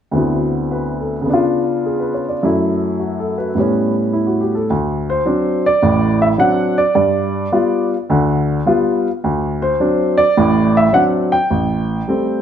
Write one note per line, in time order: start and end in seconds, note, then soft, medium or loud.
0.11 1.26 D2 soft
0.11 1.27 D3 soft
0.11 1.24 B3 soft
0.11 1.28 C4 soft
0.16 1.28 E4 soft
0.16 1.29 F#4 soft
0.71 1.16 B4 soft
1.00 1.39 A4 soft
1.22 2.38 C#3 medium
1.22 2.40 B3 soft
1.30 2.42 D4 soft
1.30 2.44 F4 medium
1.86 2.12 G#4 soft
2.00 2.24 B4 soft
2.14 2.31 C#5 soft
2.29 2.48 D5 soft
2.43 3.56 F#2 medium
2.43 3.56 F#3 soft
2.43 3.56 A3 soft
2.43 3.56 E4 medium
3.00 3.35 F#4 soft
3.19 3.48 A4 soft
3.38 3.67 B4 soft
3.55 4.68 A2 medium
3.55 4.69 G3 soft
3.55 4.70 B3 soft
3.60 4.71 C#4 medium
4.13 4.40 E4 soft
4.27 4.51 F#4 soft
4.41 4.57 G4 soft
4.55 4.74 A4 soft
4.70 5.19 D2 medium
5.10 5.61 C5 medium
5.25 5.66 F#3 soft
5.25 5.66 C4 soft
5.25 5.66 D4 medium
5.66 6.18 D5 medium
5.82 6.32 A1 medium
5.82 6.32 A2 medium
6.22 6.27 E5 medium
6.38 6.79 F#3 medium
6.38 6.79 C4 soft
6.38 6.79 D4 medium
6.38 6.75 F#5 medium
6.78 6.94 D5 medium
6.95 7.45 G2 medium
6.95 7.87 D5 medium
7.52 7.93 G3 soft
7.52 7.93 B3 soft
7.52 7.93 F4 medium
8.10 8.59 D2 medium
8.10 8.58 D3 medium
8.66 9.06 G3 medium
8.66 9.07 B3 soft
8.66 9.07 F4 medium
9.24 9.72 D2 medium
9.62 10.14 C5 medium
9.80 10.20 F#3 soft
9.80 10.20 C4 soft
9.80 10.20 D4 medium
10.18 10.76 D5 loud
10.37 10.86 A1 medium
10.37 10.86 A2 medium
10.77 10.92 E5 medium
10.93 11.33 F#3 medium
10.93 11.33 C4 medium
10.93 11.34 D4 medium
10.93 11.03 F#5 medium
11.32 12.41 G5 medium
11.51 11.99 A1 medium
12.08 12.42 G3 soft
12.08 12.42 A3 soft
12.08 12.42 C4 medium